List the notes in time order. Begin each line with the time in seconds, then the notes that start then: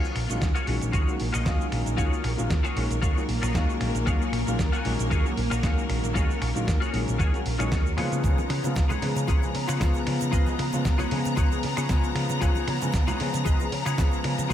Already playing: A#3 F4 F#4 G#4 A#4 C#5
0.04 cabasa
0.15 A#1, finger snap, open hi-hat
0.29 A#1 D#3 F#3 G#3 C#4 F4, closed hi-hat, cabasa
0.41 D#2, kick, snare, closed hi-hat, cabasa
0.55 F4 F#4 G#4 C#5, closed hi-hat, cabasa
0.67 A#1 D#3 F#3 G#3 C#4, open hi-hat
0.82 A#1, closed hi-hat, cabasa
0.92 D#2 F4 F#4 G#4 C#5, kick, closed hi-hat, cabasa
1.07 D#3 F#3 G#3 C#4 F#4, cabasa
1.20 A#1, open hi-hat
1.33 A#1 F4 F#4 G#4 D#5, finger snap, cabasa
1.45 D#2 D#3 F#3 G#3 C#4 F5, kick, snare, closed hi-hat, cabasa
1.61 cabasa
1.72 A#1, finger snap, open hi-hat
1.86 A#1, closed hi-hat, cabasa
1.97 D#2 D#3 F#3 G#3 C#4 F4 F#4 G#4 C#5, kick, closed hi-hat, cabasa
2.13 cabasa
2.24 A#1, finger snap, open hi-hat
2.37 A#1 D#3 F#3 G#3 C#4 F4, closed hi-hat, cabasa
2.50 D#2, kick, snare, closed hi-hat, cabasa
2.63 F4 F#4 G#4 C#5, closed hi-hat, cabasa
2.76 A#1 D#3 F#3 G#3 C#4, open hi-hat
2.90 A#1, closed hi-hat, cabasa
3.02 D#2 F4 F#4 G#4 C#5, kick, closed hi-hat, cabasa
3.16 D#3 F#3 G#3 C#4 F#4, cabasa
3.28 A#1, open hi-hat
3.42 A#1 F4 F#4 G#4 C#5, finger snap, cabasa
3.54 D#2 D#3 F#3 G#3 C#4 F5, kick, snare, closed hi-hat, cabasa
3.70 cabasa
3.80 A#1, finger snap, open hi-hat
3.94 A#1, closed hi-hat, cabasa
4.06 D#2 D#3 F#3 G#3 C#4 F4 F#4 G#4 C#5, kick, closed hi-hat, cabasa
4.22 cabasa
4.32 A#1, finger snap, open hi-hat
4.47 A#1 D#3 F#3 G#3 C#4 F4, closed hi-hat, cabasa
4.59 D#2, kick, snare, closed hi-hat, cabasa
4.72 F4 F#4 G#4 C#5, closed hi-hat, cabasa
4.85 A#1 D#3 F#3 G#3 C#4, open hi-hat
4.99 A#1, closed hi-hat, cabasa
5.10 D#2 F4 F#4 G#4 C#5, kick, closed hi-hat, cabasa
5.25 D#3 F#3 G#3 C#4 F#4, cabasa
5.37 A#1, open hi-hat
5.50 A#1 F4 F#4 G#4 C#5, finger snap, cabasa
5.63 D#2 D#3 F#3 G#3 C#4 F5, kick, snare, closed hi-hat, cabasa
5.78 cabasa
5.89 A#1, finger snap, open hi-hat
6.03 A#1, closed hi-hat, cabasa
6.14 D#2 D#3 F#3 G#3 C#4 F4 F#4 G#4 C#5, kick, closed hi-hat, cabasa
6.30 cabasa
6.41 A#1, finger snap, open hi-hat
6.55 A#1 D#3 F#3 G#3 C#4 F4, closed hi-hat, cabasa
6.67 D#2, kick, snare, closed hi-hat, cabasa
6.80 F4 F#4 G#4 C#5, closed hi-hat, cabasa
6.93 A#1 D#3 F#3 G#3 C#4, open hi-hat
7.08 A#1, closed hi-hat, cabasa
7.18 D#2 F4 F#4 G#4 C#5, kick, closed hi-hat, cabasa
7.33 D#3 F#3 G#3 C#4 F#4, closed hi-hat, cabasa
7.45 A#1, open hi-hat
7.58 A#1 D#3 F#3 G#3 C#4 D#4 F4 F#4 G#4 C#5, finger snap, closed hi-hat, cabasa
7.71 D#2, kick, snare, closed hi-hat, cabasa
7.87 cabasa
7.97 C#3 F3 G#3 B3 F4 G#4 B4 C#5, finger snap, open hi-hat
8.12 C#3, closed hi-hat, cabasa
8.23 C#2 C#3 F3 G#3 B3 F4 A#5, kick, closed hi-hat, cabasa, shaker
8.38 high conga, cabasa, shaker
8.49 C#3, finger snap, open hi-hat, ride, high conga
8.64 C#3 F3 G#3 B3 F4, closed hi-hat, cabasa, shaker
8.75 C#2, kick, snare, closed hi-hat, cabasa, shaker
8.89 F4 G#4 B4 C#5, closed hi-hat, low conga, cabasa, shaker
9.02 C#3 F3 G#3 B3 G#4, open hi-hat, ride
9.16 C#3, closed hi-hat, cabasa, shaker
9.27 C#2 F4 G#4 B4 C#5, kick, closed hi-hat, cabasa, shaker
9.42 C#3 F3 G#3 B3 G#4, cabasa, shaker
9.55 C#3, open hi-hat, ride
9.68 C#3 F4 G#4 B4 C#5, finger snap, cabasa, shaker
9.80 C#2 C#3 F3 G#3 B3 F4, kick, snare, closed hi-hat, cabasa, shaker
9.94 cabasa, shaker
10.07 C#3, finger snap, open hi-hat, ride
10.20 C#3, closed hi-hat, high conga, cabasa, shaker
10.32 C#2 C#3 F3 G#3 B3 F4 G#4 B4 D#5, kick, closed hi-hat, cabasa, shaker
10.46 high conga, cabasa, shaker
10.59 C#3, finger snap, open hi-hat, ride, high conga
10.72 C#3 F3 G#3 B3 F4, closed hi-hat, cabasa, shaker
10.85 C#2, kick, snare, closed hi-hat, cabasa, shaker
10.98 F4 G#4 B4 C#5, closed hi-hat, low conga, cabasa, shaker
11.11 C#3 F3 G#3 B3 G#4, open hi-hat, ride
11.25 C#3, closed hi-hat, cabasa, shaker
11.36 C#2 F4 G#4 B4 C#5, kick, closed hi-hat, cabasa, shaker
11.51 C#3 F3 G#3 B3 G#4, cabasa, shaker
11.63 C#3, open hi-hat, ride
11.77 C#3 F4 G#4 B4 C#5, finger snap, cabasa, shaker
11.89 C#2 C#3 F3 G#3 B3 F4, kick, snare, closed hi-hat, cabasa, shaker
12.03 cabasa, shaker
12.15 C#3, finger snap, open hi-hat, ride
12.29 C#3, closed hi-hat, high conga, cabasa, shaker
12.41 C#2 C#3 F3 G#3 B3 F4 G#4 B4 C#5, kick, closed hi-hat, cabasa, shaker
12.55 high conga, cabasa, shaker
12.67 C#3, finger snap, open hi-hat, ride, high conga
12.81 C#3 F3 G#3 B3 F4, closed hi-hat, cabasa, shaker
12.92 C#2, kick, snare, closed hi-hat, cabasa, shaker
13.07 F4 G#4 B4 C#5, closed hi-hat, low conga, cabasa, shaker
13.19 C#3 F3 G#3 B3 G#4, open hi-hat, ride
13.33 C#3, closed hi-hat, cabasa, shaker
13.45 C#2 F4 G#4 B4 D#5, kick, closed hi-hat, cabasa, shaker
13.59 C#3 F3 G#3 B3 G#4, cabasa, shaker
13.72 C#3, open hi-hat, ride
13.85 C#3 F4 G#4 B4 C#5, finger snap, cabasa, shaker
13.98 C#2 C#3 F3 G#3 B3 F4, kick, snare, closed hi-hat, cabasa, shaker
14.11 cabasa, shaker
14.24 C#3, finger snap, open hi-hat, ride
14.38 C#3, closed hi-hat, high conga, cabasa, shaker
14.49 C#2 C#3 F3 F4 G#4, kick, closed hi-hat, shaker